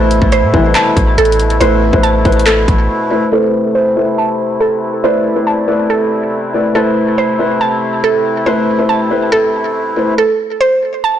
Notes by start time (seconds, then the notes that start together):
Already playing: A1 B2 A3 E4 A4 B4 C5
0.11 closed hi-hat
0.22 A1, kick
0.32 C5, cross-stick, closed hi-hat
0.43 A2
0.53 A1 C2 B2 E3 A3 E4 B4 C5, kick
0.75 A5, clap, closed hi-hat
0.97 A1, kick, closed hi-hat
1.18 A1 A4, closed hi-hat
1.25 closed hi-hat
1.32 closed hi-hat
1.40 closed hi-hat
1.50 closed hi-hat
1.60 A1 A3 E4 B4 C5, closed hi-hat
1.93 A1 A3 E4 B4 C5, kick
2.03 A5, closed hi-hat
2.25 A1 A3 E4 B4 C5, kick, closed hi-hat
2.32 closed hi-hat
2.39 closed hi-hat
2.46 A4, clap, closed hi-hat
2.68 A1, kick, closed hi-hat
3.10 A3 E4 B4 C5
3.32 C3 A3 C4 E4 A4 B4 C5
3.75 C5
3.96 A3 E4 B4 C5
4.18 A5
4.60 A4
5.03 A3 E4 B4 C5 D5
5.35 A3 E4 B4 C5
5.47 A5
5.67 A3 E4 B4 D5
5.90 A4
6.54 A3 E4 B4 D5
6.75 A3 E4 A4 B4 C5
7.18 C5
7.39 A3 E4 B4 C5
7.61 A5
8.04 A4
8.46 A3 E4 B4 C5
8.79 A3 E4 B4 C5
8.89 A5
9.10 A3 E4 B4 C5
9.32 A4
9.96 A3 E4 B4 C5
10.18 A4
10.61 C5
11.04 A5